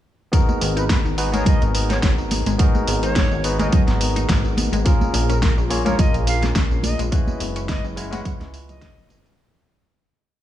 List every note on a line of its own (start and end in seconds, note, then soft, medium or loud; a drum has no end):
0.32 0.42 F#3 medium
0.32 1.14 B3 medium
0.32 1.14 D#4 medium
0.32 1.15 F#4 medium
0.32 1.15 G#4 medium
0.32 1.15 A#4 loud
0.32 kick loud
0.32 closed hi-hat medium
0.32 tambourine soft
0.49 0.59 G#3 medium
0.49 tambourine soft
0.49 high conga medium
0.61 1.01 G#1 loud
0.61 0.70 B3 medium
0.61 open hi-hat loud
0.61 tambourine medium
0.77 0.81 D#4 loud
0.77 0.85 B4 medium
0.77 closed hi-hat medium
0.77 tambourine soft
0.90 0.98 F#4 medium
0.90 1.00 B4 medium
0.90 kick loud
0.90 snare loud
0.90 closed hi-hat medium
0.90 tambourine soft
0.90 high conga medium
1.05 1.43 G#1 medium
1.05 1.12 D#4 medium
1.05 tambourine soft
1.17 1.29 B3 medium
1.17 1.31 B3 medium
1.17 1.30 D#4 medium
1.17 1.30 F#4 medium
1.17 1.30 G#4 medium
1.17 1.30 B4 loud
1.17 open hi-hat medium
1.17 tambourine medium
1.32 1.40 G#3 loud
1.32 2.56 B3 medium
1.32 2.56 D#4 medium
1.32 2.56 F#4 medium
1.32 2.56 G#4 medium
1.32 2.57 A#4 loud
1.32 1.44 C#5 medium
1.32 closed hi-hat medium
1.32 tambourine soft
1.32 high conga medium
1.45 1.58 G#1 soft
1.45 1.55 F#3 medium
1.45 1.62 D#5 medium
1.45 kick loud
1.45 closed hi-hat medium
1.45 tambourine soft
1.45 low conga medium
1.62 1.99 G#1 loud
1.62 1.72 G#3 medium
1.62 closed hi-hat soft
1.62 tambourine soft
1.75 1.83 B3 medium
1.75 open hi-hat loud
1.75 tambourine medium
1.90 1.94 D#4 loud
1.90 1.98 C#5 medium
1.90 snare soft
1.90 closed hi-hat medium
1.90 tambourine soft
1.90 high conga medium
2.02 2.42 G#1 medium
2.02 2.11 F#4 medium
2.02 2.13 C#5 medium
2.02 kick loud
2.02 snare loud
2.02 closed hi-hat medium
2.02 tambourine soft
2.18 2.25 D#4 medium
2.18 tambourine soft
2.31 2.44 B3 medium
2.31 open hi-hat medium
2.31 tambourine medium
2.31 high conga loud
2.46 2.57 G#1 loud
2.46 2.54 G#3 loud
2.46 closed hi-hat medium
2.46 tambourine soft
2.58 2.68 F#3 medium
2.58 3.41 B3 medium
2.58 3.41 D#4 medium
2.58 3.41 F#4 medium
2.58 3.42 G#4 medium
2.58 3.42 A#4 loud
2.58 kick loud
2.58 closed hi-hat medium
2.58 tambourine soft
2.75 2.86 G#3 medium
2.75 tambourine soft
2.75 high conga medium
2.87 3.28 G#1 loud
2.87 2.96 B3 medium
2.87 open hi-hat loud
2.87 tambourine medium
3.03 3.07 D#4 loud
3.03 3.44 C#5 loud
3.03 closed hi-hat medium
3.03 tambourine soft
3.16 3.24 F#4 medium
3.16 kick loud
3.16 snare loud
3.16 closed hi-hat medium
3.16 tambourine soft
3.16 high conga medium
3.31 3.69 G#1 medium
3.31 3.38 D#4 medium
3.31 tambourine soft
3.44 3.56 B3 medium
3.44 3.57 B3 medium
3.44 3.56 D#4 medium
3.44 3.56 F#4 medium
3.44 3.56 G#4 medium
3.44 3.56 B4 loud
3.44 open hi-hat medium
3.44 tambourine medium
3.58 3.67 G#3 loud
3.58 4.82 B3 medium
3.58 4.82 D#4 medium
3.58 4.83 F#4 medium
3.58 4.83 G#4 medium
3.58 4.83 A#4 loud
3.58 3.68 D#5 loud
3.58 closed hi-hat medium
3.58 tambourine soft
3.58 high conga medium
3.72 3.81 F#3 medium
3.72 3.83 D#5 medium
3.72 kick loud
3.72 closed hi-hat medium
3.72 tambourine soft
3.72 low conga medium
3.88 4.26 G#1 medium
3.88 3.98 G#3 medium
3.88 snare soft
3.88 closed hi-hat soft
3.88 tambourine soft
4.01 4.09 B3 medium
4.01 open hi-hat loud
4.01 tambourine medium
4.16 4.20 D#4 loud
4.16 closed hi-hat medium
4.16 tambourine soft
4.16 high conga medium
4.29 4.69 G#1 loud
4.29 4.37 F#4 medium
4.29 kick loud
4.29 snare loud
4.29 closed hi-hat medium
4.29 tambourine soft
4.44 4.52 D#4 medium
4.44 tambourine soft
4.57 4.70 B3 medium
4.57 open hi-hat loud
4.57 tambourine medium
4.57 high conga loud
4.72 4.83 G#1 loud
4.72 4.80 G#3 loud
4.72 closed hi-hat medium
4.72 tambourine soft
4.85 4.94 F3 medium
4.85 5.67 A#3 medium
4.85 5.67 C#4 medium
4.85 5.67 F4 medium
4.85 5.68 G#4 medium
4.85 5.68 A#4 loud
4.85 kick loud
4.85 closed hi-hat medium
4.85 tambourine soft
5.01 5.12 G#3 medium
5.01 tambourine soft
5.01 high conga medium
5.14 5.53 A#1 loud
5.14 5.22 A#3 medium
5.14 open hi-hat loud
5.14 tambourine medium
5.29 5.34 C#4 loud
5.29 5.38 A#4 medium
5.29 closed hi-hat medium
5.29 tambourine soft
5.42 5.51 F4 medium
5.42 5.52 A#4 medium
5.42 kick loud
5.42 snare loud
5.42 closed hi-hat medium
5.42 tambourine soft
5.42 high conga medium
5.57 5.95 A#1 medium
5.57 5.65 C#4 medium
5.57 tambourine soft
5.70 5.82 A#3 medium
5.70 5.83 A#3 medium
5.70 5.82 C#4 medium
5.70 5.82 F4 medium
5.70 5.82 G#4 medium
5.70 5.83 C#5 loud
5.70 open hi-hat medium
5.70 tambourine medium
5.85 5.93 G#3 loud
5.85 7.08 A#3 loud
5.85 7.09 C#4 medium
5.85 7.09 F4 medium
5.85 7.09 G#4 medium
5.85 7.10 A#4 loud
5.85 5.96 C#5 medium
5.85 closed hi-hat medium
5.85 tambourine soft
5.85 high conga loud
5.98 6.11 A#1 soft
5.98 6.07 F3 medium
5.98 6.15 D#5 medium
5.98 kick loud
5.98 closed hi-hat medium
5.98 tambourine soft
5.98 low conga medium
6.14 6.52 A#1 loud
6.14 6.25 G#3 medium
6.14 closed hi-hat soft
6.14 tambourine soft
6.27 6.36 A#3 medium
6.27 6.43 F5 medium
6.27 open hi-hat loud
6.27 tambourine medium
6.43 6.47 C#4 loud
6.43 snare soft
6.43 closed hi-hat medium
6.43 tambourine soft
6.43 high conga medium
6.55 6.95 A#1 loud
6.55 6.64 F4 medium
6.55 kick loud
6.55 snare loud
6.55 closed hi-hat medium
6.55 tambourine soft
6.71 6.78 C#4 medium
6.71 tambourine soft
6.83 6.97 A#3 medium
6.83 7.00 D#5 loud
6.83 open hi-hat loud
6.83 tambourine medium
6.83 high conga loud
6.99 7.10 A#1 loud
6.99 7.07 G#3 loud
6.99 closed hi-hat medium
6.99 tambourine soft
7.11 7.21 F#3 medium
7.11 7.94 G#3 medium
7.11 7.94 C#4 medium
7.11 7.94 E4 medium
7.11 7.94 F#4 medium
7.11 7.94 B4 loud
7.11 kick loud
7.11 closed hi-hat medium
7.11 tambourine soft
7.27 7.38 G#3 medium
7.27 tambourine soft
7.27 high conga medium
7.40 7.80 F#1 loud
7.40 7.49 B3 medium
7.40 open hi-hat loud
7.40 tambourine medium
7.56 7.60 C#4 loud
7.56 closed hi-hat medium
7.56 tambourine soft
7.68 7.77 E4 medium
7.68 7.85 D#5 loud
7.68 kick loud
7.68 snare loud
7.68 closed hi-hat medium
7.68 tambourine soft
7.68 high conga medium
7.84 8.22 F#1 medium
7.84 7.91 C#4 medium
7.84 tambourine soft
7.96 8.08 G#3 medium
7.96 8.10 B3 medium
7.96 8.09 C#4 medium
7.96 8.09 E4 medium
7.96 8.09 F#4 medium
7.96 8.09 C#5 medium
7.96 open hi-hat medium
7.96 tambourine medium
8.11 9.35 G#3 loud
8.11 8.20 G#3 loud
8.11 9.35 C#4 medium
8.11 9.35 E4 medium
8.11 9.35 F#4 medium
8.11 9.36 B4 loud
8.11 8.20 F#5 medium
8.11 closed hi-hat medium
8.11 tambourine soft
8.11 high conga loud
8.25 8.34 F#3 medium
8.25 8.35 F#5 medium
8.25 kick loud
8.25 closed hi-hat medium
8.25 tambourine soft
8.25 low conga medium
8.41 8.83 C#2 loud
8.41 8.52 G#3 medium
8.41 snare soft
8.41 closed hi-hat soft
8.41 tambourine soft
8.54 8.59 E4 loud
8.54 open hi-hat loud
8.54 tambourine medium
8.69 8.76 F#3 medium
8.69 9.38 D#5 loud
8.69 closed hi-hat medium
8.69 tambourine soft
8.69 high conga medium
8.82 9.27 F#1 medium
8.82 8.95 G#3 medium
8.82 kick loud
8.82 snare loud
8.82 closed hi-hat medium
8.82 tambourine soft
8.98 9.02 F#3 loud
8.98 tambourine soft
9.10 9.16 B3 medium
9.10 open hi-hat loud
9.10 tambourine medium
9.10 high conga medium
9.26 9.37 E1 medium
9.26 9.33 C#4 medium
9.26 closed hi-hat medium
9.26 tambourine soft